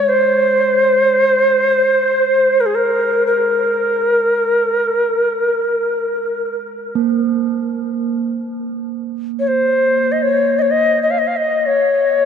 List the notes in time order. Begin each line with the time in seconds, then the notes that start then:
Already playing: G#3 C#5
0.09 C5
2.60 A#4
2.66 G#4
2.75 A#4
3.27 A#4
6.95 A#3
9.39 C#5
9.48 C5
10.12 D#5
10.22 C#5
10.59 C#5 D#5
10.71 D#5
11.03 D#5
11.11 F5
11.19 D#5
11.27 F5
11.37 D#5
11.66 C#5